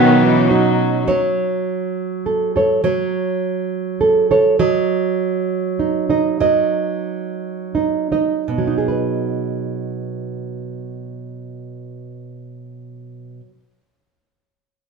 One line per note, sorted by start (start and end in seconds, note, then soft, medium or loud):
0.00 1.04 B2 medium
0.00 1.07 B2 medium
0.00 0.23 D#3 medium
0.00 1.06 F#3 medium
0.00 1.07 F#3 medium
0.00 0.52 B3 medium
0.00 1.07 C#4 medium
0.00 1.07 D#4 medium
0.00 1.05 C#5 medium
0.22 0.50 E3 medium
0.48 1.07 F#3 medium
0.48 1.05 D#4 medium
1.08 2.83 F#3 medium
1.08 2.55 C#5 medium
2.26 2.55 A4 soft
2.56 2.81 A4 soft
2.56 2.82 C#5 medium
2.84 4.59 F#3 medium
2.84 4.30 C#5 medium
4.01 4.30 A4 soft
4.31 4.56 A4 soft
4.31 4.57 C#5 soft
4.59 6.40 F#3 medium
4.59 6.10 D#5 medium
5.79 6.09 D#4 soft
6.10 7.74 D#4 soft
6.10 6.41 D#5 soft
6.40 8.57 F#3 medium
6.40 8.10 D#5 soft
7.75 8.10 D#4 soft
8.12 8.66 D#4 soft
8.12 8.43 D#5 soft
8.48 13.40 B2 soft
8.58 13.50 F#3 soft
8.67 13.60 D#4 soft
8.78 13.70 G#4 soft
8.88 13.80 B4 soft